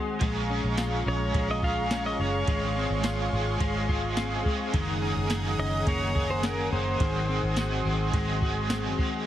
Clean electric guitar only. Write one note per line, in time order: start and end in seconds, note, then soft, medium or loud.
0.00 0.21 D#3 medium
0.00 0.21 G#3 medium
0.00 0.27 C4 medium
0.00 0.27 F#4 medium
0.21 1.34 G#3 medium
0.50 1.05 C#4 medium
0.77 1.62 F4 medium
1.06 1.91 C#4 medium
1.34 2.19 G#3 medium
1.63 3.04 F4 medium
1.91 2.76 C#4 medium
2.19 2.47 G#3 medium
2.48 3.60 G#3 medium
2.76 3.32 C4 medium
3.04 3.88 F4 medium
3.61 4.45 G#3 medium
3.89 4.79 F4 medium
4.17 4.79 C4 medium
4.45 5.86 G#3 medium
4.73 7.00 D#3 medium
5.02 5.57 C#4 medium
5.30 6.15 G#4 medium
5.59 6.42 C#4 medium
5.87 6.71 A#3 medium
6.15 7.56 G#4 medium
6.43 7.06 C#4 medium
6.72 7.06 A#3 medium
7.00 9.26 D#3 loud
7.28 7.84 C4 medium
7.57 8.41 F#4 medium
7.85 8.69 C4 medium
8.14 8.98 G#3 medium
8.42 9.26 F#4 medium
8.70 9.26 C4 medium
8.98 9.26 G#3 medium